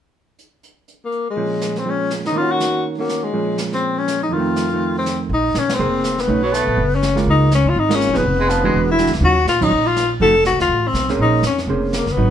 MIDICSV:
0, 0, Header, 1, 6, 480
1, 0, Start_track
1, 0, Key_signature, -5, "minor"
1, 0, Tempo, 245499
1, 749, Time_signature, 4, 2, 24, 8
1, 24053, End_track
2, 0, Start_track
2, 0, Title_t, "Tenor saxophone"
2, 0, Program_c, 0, 66
2, 2053, Note_on_c, 0, 58, 66
2, 2472, Note_off_c, 0, 58, 0
2, 2549, Note_on_c, 0, 56, 67
2, 3499, Note_on_c, 0, 60, 74
2, 3529, Note_off_c, 0, 56, 0
2, 3708, Note_on_c, 0, 61, 74
2, 3737, Note_off_c, 0, 60, 0
2, 4151, Note_off_c, 0, 61, 0
2, 4430, Note_on_c, 0, 63, 75
2, 4636, Note_on_c, 0, 65, 85
2, 4665, Note_off_c, 0, 63, 0
2, 4916, Note_on_c, 0, 66, 82
2, 4945, Note_off_c, 0, 65, 0
2, 5575, Note_off_c, 0, 66, 0
2, 5861, Note_on_c, 0, 58, 69
2, 6325, Note_on_c, 0, 56, 69
2, 6354, Note_off_c, 0, 58, 0
2, 7001, Note_off_c, 0, 56, 0
2, 7311, Note_on_c, 0, 60, 77
2, 7789, Note_on_c, 0, 61, 77
2, 7818, Note_off_c, 0, 60, 0
2, 8255, Note_off_c, 0, 61, 0
2, 8268, Note_on_c, 0, 63, 69
2, 8460, Note_on_c, 0, 65, 77
2, 8489, Note_off_c, 0, 63, 0
2, 9693, Note_off_c, 0, 65, 0
2, 9747, Note_on_c, 0, 60, 61
2, 10164, Note_off_c, 0, 60, 0
2, 10430, Note_on_c, 0, 63, 80
2, 10917, Note_on_c, 0, 61, 74
2, 10947, Note_off_c, 0, 63, 0
2, 11214, Note_on_c, 0, 60, 77
2, 11243, Note_off_c, 0, 61, 0
2, 12145, Note_on_c, 0, 59, 78
2, 12174, Note_off_c, 0, 60, 0
2, 13593, Note_on_c, 0, 61, 77
2, 13622, Note_off_c, 0, 59, 0
2, 14037, Note_off_c, 0, 61, 0
2, 14268, Note_on_c, 0, 63, 83
2, 14682, Note_off_c, 0, 63, 0
2, 14751, Note_on_c, 0, 61, 80
2, 15034, Note_on_c, 0, 65, 82
2, 15063, Note_off_c, 0, 61, 0
2, 15233, Note_on_c, 0, 63, 83
2, 15262, Note_off_c, 0, 65, 0
2, 15533, Note_on_c, 0, 61, 81
2, 15563, Note_off_c, 0, 63, 0
2, 15977, Note_on_c, 0, 59, 83
2, 16006, Note_off_c, 0, 61, 0
2, 17387, Note_off_c, 0, 59, 0
2, 17426, Note_on_c, 0, 64, 82
2, 17840, Note_off_c, 0, 64, 0
2, 18067, Note_on_c, 0, 66, 89
2, 18498, Note_off_c, 0, 66, 0
2, 18548, Note_on_c, 0, 65, 84
2, 18827, Note_on_c, 0, 63, 88
2, 18856, Note_off_c, 0, 65, 0
2, 19294, Note_on_c, 0, 65, 85
2, 19323, Note_off_c, 0, 63, 0
2, 19765, Note_off_c, 0, 65, 0
2, 19980, Note_on_c, 0, 69, 100
2, 20414, Note_off_c, 0, 69, 0
2, 20456, Note_on_c, 0, 66, 85
2, 20708, Note_off_c, 0, 66, 0
2, 20749, Note_on_c, 0, 65, 95
2, 21262, Note_on_c, 0, 60, 84
2, 21291, Note_off_c, 0, 65, 0
2, 21708, Note_off_c, 0, 60, 0
2, 21933, Note_on_c, 0, 63, 93
2, 22351, Note_off_c, 0, 63, 0
2, 22417, Note_on_c, 0, 61, 78
2, 22649, Note_off_c, 0, 61, 0
2, 23398, Note_on_c, 0, 58, 69
2, 23699, Note_on_c, 0, 59, 78
2, 23728, Note_off_c, 0, 58, 0
2, 24053, Note_off_c, 0, 59, 0
2, 24053, End_track
3, 0, Start_track
3, 0, Title_t, "Hollow-body jazz guitar"
3, 0, Program_c, 1, 26
3, 2663, Note_on_c, 1, 46, 36
3, 2675, Note_on_c, 1, 53, 40
3, 2684, Note_on_c, 1, 56, 40
3, 2689, Note_on_c, 1, 61, 41
3, 3601, Note_off_c, 1, 53, 0
3, 3625, Note_on_c, 1, 53, 32
3, 3627, Note_off_c, 1, 56, 0
3, 3650, Note_on_c, 1, 56, 32
3, 3656, Note_off_c, 1, 61, 0
3, 3679, Note_on_c, 1, 61, 35
3, 4522, Note_off_c, 1, 53, 0
3, 4530, Note_on_c, 1, 51, 51
3, 4590, Note_off_c, 1, 46, 0
3, 4598, Note_off_c, 1, 56, 0
3, 4606, Note_on_c, 1, 58, 46
3, 4618, Note_off_c, 1, 61, 0
3, 4679, Note_on_c, 1, 61, 51
3, 4733, Note_on_c, 1, 66, 52
3, 5809, Note_off_c, 1, 58, 0
3, 5831, Note_off_c, 1, 61, 0
3, 5833, Note_on_c, 1, 58, 32
3, 5853, Note_off_c, 1, 66, 0
3, 5854, Note_on_c, 1, 61, 36
3, 5876, Note_on_c, 1, 66, 36
3, 6485, Note_off_c, 1, 51, 0
3, 6514, Note_on_c, 1, 46, 36
3, 6515, Note_off_c, 1, 58, 0
3, 6515, Note_off_c, 1, 61, 0
3, 6525, Note_on_c, 1, 53, 42
3, 6530, Note_on_c, 1, 56, 43
3, 6536, Note_off_c, 1, 66, 0
3, 6538, Note_on_c, 1, 61, 41
3, 8393, Note_on_c, 1, 41, 47
3, 8438, Note_off_c, 1, 46, 0
3, 8443, Note_off_c, 1, 53, 0
3, 8446, Note_off_c, 1, 56, 0
3, 8450, Note_off_c, 1, 61, 0
3, 8471, Note_on_c, 1, 51, 50
3, 8545, Note_on_c, 1, 57, 48
3, 8603, Note_on_c, 1, 60, 51
3, 9210, Note_off_c, 1, 51, 0
3, 9234, Note_on_c, 1, 51, 34
3, 9243, Note_off_c, 1, 57, 0
3, 9267, Note_on_c, 1, 57, 35
3, 9275, Note_off_c, 1, 60, 0
3, 9298, Note_on_c, 1, 60, 42
3, 10337, Note_off_c, 1, 41, 0
3, 10357, Note_off_c, 1, 51, 0
3, 10374, Note_off_c, 1, 57, 0
3, 10390, Note_off_c, 1, 60, 0
3, 11325, Note_on_c, 1, 58, 63
3, 11337, Note_on_c, 1, 68, 60
3, 11343, Note_on_c, 1, 72, 65
3, 12028, Note_off_c, 1, 58, 0
3, 12034, Note_off_c, 1, 68, 0
3, 12037, Note_off_c, 1, 72, 0
3, 12270, Note_on_c, 1, 57, 52
3, 12293, Note_on_c, 1, 63, 57
3, 12295, Note_on_c, 1, 61, 53
3, 12529, Note_off_c, 1, 57, 0
3, 12540, Note_off_c, 1, 63, 0
3, 12541, Note_off_c, 1, 61, 0
3, 13992, Note_on_c, 1, 56, 61
3, 14008, Note_on_c, 1, 58, 61
3, 14016, Note_on_c, 1, 65, 67
3, 14635, Note_off_c, 1, 56, 0
3, 14642, Note_off_c, 1, 58, 0
3, 14647, Note_off_c, 1, 65, 0
3, 15428, Note_on_c, 1, 56, 48
3, 15449, Note_on_c, 1, 58, 54
3, 15457, Note_on_c, 1, 65, 57
3, 15885, Note_off_c, 1, 56, 0
3, 15896, Note_off_c, 1, 58, 0
3, 15900, Note_off_c, 1, 65, 0
3, 15901, Note_on_c, 1, 53, 54
3, 15908, Note_on_c, 1, 59, 56
3, 15917, Note_on_c, 1, 63, 53
3, 15932, Note_on_c, 1, 68, 57
3, 16088, Note_off_c, 1, 53, 0
3, 16092, Note_off_c, 1, 59, 0
3, 16096, Note_off_c, 1, 63, 0
3, 16103, Note_off_c, 1, 68, 0
3, 16885, Note_on_c, 1, 52, 53
3, 16891, Note_on_c, 1, 56, 60
3, 16898, Note_on_c, 1, 62, 59
3, 16900, Note_on_c, 1, 66, 68
3, 17520, Note_off_c, 1, 52, 0
3, 17523, Note_off_c, 1, 56, 0
3, 17526, Note_off_c, 1, 62, 0
3, 17527, Note_off_c, 1, 66, 0
3, 17582, Note_on_c, 1, 52, 54
3, 17584, Note_on_c, 1, 56, 52
3, 17595, Note_on_c, 1, 62, 50
3, 17598, Note_on_c, 1, 66, 58
3, 17823, Note_off_c, 1, 52, 0
3, 17824, Note_off_c, 1, 56, 0
3, 17829, Note_off_c, 1, 62, 0
3, 17830, Note_off_c, 1, 66, 0
3, 18029, Note_on_c, 1, 51, 48
3, 18036, Note_on_c, 1, 54, 44
3, 18055, Note_on_c, 1, 61, 48
3, 18057, Note_on_c, 1, 65, 56
3, 18286, Note_off_c, 1, 51, 0
3, 18290, Note_off_c, 1, 54, 0
3, 18299, Note_off_c, 1, 61, 0
3, 18300, Note_off_c, 1, 65, 0
3, 18784, Note_on_c, 1, 51, 62
3, 18786, Note_on_c, 1, 54, 65
3, 18797, Note_on_c, 1, 61, 67
3, 18809, Note_on_c, 1, 65, 69
3, 18969, Note_off_c, 1, 51, 0
3, 18970, Note_off_c, 1, 54, 0
3, 18975, Note_off_c, 1, 61, 0
3, 18981, Note_off_c, 1, 65, 0
3, 19956, Note_on_c, 1, 53, 57
3, 19968, Note_on_c, 1, 63, 49
3, 19970, Note_on_c, 1, 57, 55
3, 19972, Note_on_c, 1, 66, 64
3, 20209, Note_off_c, 1, 53, 0
3, 20215, Note_off_c, 1, 63, 0
3, 20216, Note_off_c, 1, 57, 0
3, 20217, Note_off_c, 1, 66, 0
3, 21694, Note_on_c, 1, 61, 72
3, 21698, Note_on_c, 1, 58, 64
3, 21701, Note_on_c, 1, 68, 69
3, 21709, Note_on_c, 1, 72, 74
3, 22322, Note_off_c, 1, 61, 0
3, 22324, Note_off_c, 1, 58, 0
3, 22326, Note_off_c, 1, 68, 0
3, 22330, Note_off_c, 1, 72, 0
3, 22853, Note_on_c, 1, 58, 48
3, 22862, Note_on_c, 1, 61, 53
3, 22872, Note_on_c, 1, 68, 56
3, 22873, Note_on_c, 1, 72, 56
3, 23547, Note_off_c, 1, 58, 0
3, 23552, Note_off_c, 1, 61, 0
3, 23557, Note_off_c, 1, 68, 0
3, 23557, Note_off_c, 1, 72, 0
3, 23802, Note_on_c, 1, 54, 57
3, 23805, Note_on_c, 1, 59, 55
3, 23816, Note_on_c, 1, 63, 66
3, 24050, Note_off_c, 1, 54, 0
3, 24052, Note_off_c, 1, 59, 0
3, 24053, Note_off_c, 1, 63, 0
3, 24053, End_track
4, 0, Start_track
4, 0, Title_t, "Baritone saxophone"
4, 0, Program_c, 2, 67
4, 12562, Note_on_c, 2, 54, 73
4, 12764, Note_on_c, 2, 57, 84
4, 12793, Note_off_c, 2, 54, 0
4, 13382, Note_off_c, 2, 57, 0
4, 16425, Note_on_c, 2, 56, 92
4, 16607, Note_on_c, 2, 53, 82
4, 16637, Note_off_c, 2, 56, 0
4, 16884, Note_off_c, 2, 53, 0
4, 16907, Note_on_c, 2, 56, 78
4, 17209, Note_off_c, 2, 56, 0
4, 24053, End_track
5, 0, Start_track
5, 0, Title_t, "Upright bass"
5, 0, Program_c, 3, 32
5, 10350, Note_on_c, 3, 34, 70
5, 10802, Note_off_c, 3, 34, 0
5, 10844, Note_on_c, 3, 35, 66
5, 11289, Note_off_c, 3, 35, 0
5, 11320, Note_on_c, 3, 29, 74
5, 12232, Note_off_c, 3, 29, 0
5, 12275, Note_on_c, 3, 35, 75
5, 12985, Note_off_c, 3, 35, 0
5, 13041, Note_on_c, 3, 34, 61
5, 13226, Note_off_c, 3, 34, 0
5, 13236, Note_on_c, 3, 30, 73
5, 14149, Note_off_c, 3, 30, 0
5, 14198, Note_on_c, 3, 37, 74
5, 14906, Note_off_c, 3, 37, 0
5, 14948, Note_on_c, 3, 38, 61
5, 15138, Note_off_c, 3, 38, 0
5, 15156, Note_on_c, 3, 32, 74
5, 15751, Note_off_c, 3, 32, 0
5, 15805, Note_on_c, 3, 34, 55
5, 15950, Note_off_c, 3, 34, 0
5, 15962, Note_on_c, 3, 30, 63
5, 16108, Note_off_c, 3, 30, 0
5, 16119, Note_on_c, 3, 29, 76
5, 17029, Note_off_c, 3, 29, 0
5, 17078, Note_on_c, 3, 28, 73
5, 17672, Note_off_c, 3, 28, 0
5, 17702, Note_on_c, 3, 35, 52
5, 17857, Note_off_c, 3, 35, 0
5, 17867, Note_on_c, 3, 37, 64
5, 17981, Note_off_c, 3, 37, 0
5, 17993, Note_on_c, 3, 39, 78
5, 18459, Note_off_c, 3, 39, 0
5, 18482, Note_on_c, 3, 46, 66
5, 18944, Note_off_c, 3, 46, 0
5, 18991, Note_on_c, 3, 34, 70
5, 19905, Note_off_c, 3, 34, 0
5, 19942, Note_on_c, 3, 29, 79
5, 20542, Note_off_c, 3, 29, 0
5, 20592, Note_on_c, 3, 36, 54
5, 20727, Note_off_c, 3, 36, 0
5, 20739, Note_on_c, 3, 39, 63
5, 20873, Note_off_c, 3, 39, 0
5, 20885, Note_on_c, 3, 33, 74
5, 21344, Note_off_c, 3, 33, 0
5, 21375, Note_on_c, 3, 35, 70
5, 21830, Note_off_c, 3, 35, 0
5, 21868, Note_on_c, 3, 34, 84
5, 22316, Note_off_c, 3, 34, 0
5, 22340, Note_on_c, 3, 41, 63
5, 22792, Note_off_c, 3, 41, 0
5, 22814, Note_on_c, 3, 29, 77
5, 23530, Note_off_c, 3, 29, 0
5, 23584, Note_on_c, 3, 30, 66
5, 23772, Note_off_c, 3, 30, 0
5, 23794, Note_on_c, 3, 32, 81
5, 24053, Note_off_c, 3, 32, 0
5, 24053, End_track
6, 0, Start_track
6, 0, Title_t, "Drums"
6, 755, Note_on_c, 9, 42, 42
6, 951, Note_off_c, 9, 42, 0
6, 1238, Note_on_c, 9, 42, 42
6, 1434, Note_off_c, 9, 42, 0
6, 1720, Note_on_c, 9, 42, 41
6, 1915, Note_off_c, 9, 42, 0
6, 2190, Note_on_c, 9, 42, 42
6, 2386, Note_off_c, 9, 42, 0
6, 2672, Note_on_c, 9, 25, 37
6, 3155, Note_on_c, 9, 38, 43
6, 3157, Note_on_c, 9, 44, 40
6, 3351, Note_off_c, 9, 38, 0
6, 3353, Note_off_c, 9, 44, 0
6, 3437, Note_on_c, 9, 38, 29
6, 3633, Note_off_c, 9, 38, 0
6, 3644, Note_off_c, 9, 25, 0
6, 3644, Note_on_c, 9, 25, 38
6, 4116, Note_on_c, 9, 38, 45
6, 4118, Note_on_c, 9, 44, 39
6, 4312, Note_off_c, 9, 38, 0
6, 4314, Note_off_c, 9, 44, 0
6, 4405, Note_on_c, 9, 38, 35
6, 4601, Note_off_c, 9, 38, 0
6, 4607, Note_off_c, 9, 25, 0
6, 4607, Note_on_c, 9, 25, 32
6, 5087, Note_on_c, 9, 38, 43
6, 5089, Note_on_c, 9, 44, 48
6, 5283, Note_off_c, 9, 38, 0
6, 5285, Note_off_c, 9, 44, 0
6, 5559, Note_off_c, 9, 25, 0
6, 5559, Note_on_c, 9, 25, 34
6, 6044, Note_on_c, 9, 38, 42
6, 6046, Note_on_c, 9, 44, 41
6, 6239, Note_off_c, 9, 38, 0
6, 6241, Note_off_c, 9, 44, 0
6, 6516, Note_off_c, 9, 25, 0
6, 6516, Note_on_c, 9, 25, 35
6, 6997, Note_on_c, 9, 38, 45
6, 6999, Note_on_c, 9, 44, 45
6, 7193, Note_off_c, 9, 38, 0
6, 7195, Note_off_c, 9, 44, 0
6, 7284, Note_on_c, 9, 38, 32
6, 7474, Note_off_c, 9, 25, 0
6, 7474, Note_on_c, 9, 25, 38
6, 7479, Note_off_c, 9, 38, 0
6, 7971, Note_on_c, 9, 38, 47
6, 7973, Note_on_c, 9, 44, 47
6, 8167, Note_off_c, 9, 38, 0
6, 8169, Note_off_c, 9, 44, 0
6, 8438, Note_off_c, 9, 25, 0
6, 8438, Note_on_c, 9, 25, 42
6, 8917, Note_on_c, 9, 38, 45
6, 8919, Note_on_c, 9, 44, 45
6, 9113, Note_off_c, 9, 38, 0
6, 9115, Note_off_c, 9, 44, 0
6, 9407, Note_off_c, 9, 25, 0
6, 9407, Note_on_c, 9, 25, 39
6, 9892, Note_on_c, 9, 38, 46
6, 9894, Note_on_c, 9, 44, 43
6, 10087, Note_off_c, 9, 38, 0
6, 10089, Note_off_c, 9, 44, 0
6, 10371, Note_off_c, 9, 25, 0
6, 10371, Note_on_c, 9, 25, 38
6, 10849, Note_on_c, 9, 38, 51
6, 10851, Note_on_c, 9, 44, 42
6, 11044, Note_off_c, 9, 38, 0
6, 11046, Note_off_c, 9, 44, 0
6, 11132, Note_on_c, 9, 38, 69
6, 11134, Note_on_c, 9, 51, 59
6, 11327, Note_off_c, 9, 38, 0
6, 11328, Note_off_c, 9, 25, 0
6, 11328, Note_on_c, 9, 25, 41
6, 11329, Note_off_c, 9, 51, 0
6, 11806, Note_on_c, 9, 38, 50
6, 11808, Note_on_c, 9, 44, 55
6, 12002, Note_off_c, 9, 38, 0
6, 12004, Note_off_c, 9, 44, 0
6, 12092, Note_on_c, 9, 38, 34
6, 12288, Note_off_c, 9, 38, 0
6, 12298, Note_off_c, 9, 25, 0
6, 12298, Note_on_c, 9, 25, 36
6, 12784, Note_on_c, 9, 38, 49
6, 12786, Note_on_c, 9, 44, 52
6, 12979, Note_off_c, 9, 38, 0
6, 12981, Note_off_c, 9, 44, 0
6, 13262, Note_off_c, 9, 25, 0
6, 13262, Note_on_c, 9, 25, 43
6, 13736, Note_on_c, 9, 38, 52
6, 13738, Note_on_c, 9, 44, 43
6, 13932, Note_off_c, 9, 38, 0
6, 13934, Note_off_c, 9, 44, 0
6, 14019, Note_on_c, 9, 38, 33
6, 14214, Note_off_c, 9, 38, 0
6, 14216, Note_off_c, 9, 25, 0
6, 14216, Note_on_c, 9, 25, 45
6, 14691, Note_on_c, 9, 38, 51
6, 14693, Note_on_c, 9, 44, 50
6, 14887, Note_off_c, 9, 38, 0
6, 14889, Note_off_c, 9, 44, 0
6, 15170, Note_off_c, 9, 25, 0
6, 15170, Note_on_c, 9, 25, 38
6, 15457, Note_on_c, 9, 38, 69
6, 15459, Note_on_c, 9, 51, 60
6, 15653, Note_off_c, 9, 38, 0
6, 15655, Note_off_c, 9, 51, 0
6, 15662, Note_on_c, 9, 44, 50
6, 15858, Note_off_c, 9, 44, 0
6, 15929, Note_on_c, 9, 38, 33
6, 16125, Note_off_c, 9, 38, 0
6, 16132, Note_off_c, 9, 25, 0
6, 16132, Note_on_c, 9, 25, 36
6, 16612, Note_on_c, 9, 38, 49
6, 16614, Note_on_c, 9, 44, 48
6, 16808, Note_off_c, 9, 38, 0
6, 16810, Note_off_c, 9, 44, 0
6, 17090, Note_off_c, 9, 25, 0
6, 17090, Note_on_c, 9, 25, 38
6, 17569, Note_on_c, 9, 38, 53
6, 17571, Note_on_c, 9, 44, 50
6, 17723, Note_off_c, 9, 38, 0
6, 17723, Note_on_c, 9, 38, 25
6, 17766, Note_off_c, 9, 44, 0
6, 17845, Note_off_c, 9, 38, 0
6, 17845, Note_on_c, 9, 38, 34
6, 17883, Note_off_c, 9, 38, 0
6, 17883, Note_on_c, 9, 38, 37
6, 18036, Note_off_c, 9, 25, 0
6, 18036, Note_on_c, 9, 25, 42
6, 18079, Note_off_c, 9, 38, 0
6, 18524, Note_on_c, 9, 38, 51
6, 18526, Note_on_c, 9, 44, 45
6, 18720, Note_off_c, 9, 38, 0
6, 18722, Note_off_c, 9, 44, 0
6, 18801, Note_on_c, 9, 36, 73
6, 18801, Note_on_c, 9, 51, 67
6, 18997, Note_off_c, 9, 36, 0
6, 18997, Note_off_c, 9, 51, 0
6, 18999, Note_off_c, 9, 25, 0
6, 18999, Note_on_c, 9, 25, 36
6, 19481, Note_on_c, 9, 38, 52
6, 19483, Note_on_c, 9, 44, 52
6, 19677, Note_off_c, 9, 38, 0
6, 19679, Note_off_c, 9, 44, 0
6, 19958, Note_off_c, 9, 25, 0
6, 19958, Note_on_c, 9, 25, 45
6, 20428, Note_on_c, 9, 38, 51
6, 20430, Note_on_c, 9, 44, 49
6, 20623, Note_off_c, 9, 38, 0
6, 20625, Note_off_c, 9, 44, 0
6, 20719, Note_on_c, 9, 38, 36
6, 20914, Note_off_c, 9, 38, 0
6, 20916, Note_off_c, 9, 25, 0
6, 20916, Note_on_c, 9, 25, 41
6, 21399, Note_on_c, 9, 38, 51
6, 21401, Note_on_c, 9, 44, 44
6, 21594, Note_off_c, 9, 38, 0
6, 21596, Note_off_c, 9, 44, 0
6, 21678, Note_on_c, 9, 38, 34
6, 21873, Note_off_c, 9, 38, 0
6, 21874, Note_off_c, 9, 25, 0
6, 21874, Note_on_c, 9, 25, 43
6, 22345, Note_on_c, 9, 38, 55
6, 22347, Note_on_c, 9, 44, 51
6, 22541, Note_off_c, 9, 38, 0
6, 22543, Note_off_c, 9, 44, 0
6, 22644, Note_on_c, 9, 38, 36
6, 22837, Note_off_c, 9, 25, 0
6, 22837, Note_on_c, 9, 25, 43
6, 22840, Note_off_c, 9, 38, 0
6, 23323, Note_on_c, 9, 38, 54
6, 23325, Note_on_c, 9, 44, 49
6, 23519, Note_off_c, 9, 38, 0
6, 23521, Note_off_c, 9, 44, 0
6, 23598, Note_on_c, 9, 38, 34
6, 23794, Note_off_c, 9, 38, 0
6, 23805, Note_off_c, 9, 25, 0
6, 23805, Note_on_c, 9, 25, 43
6, 24053, Note_off_c, 9, 25, 0
6, 24053, End_track
0, 0, End_of_file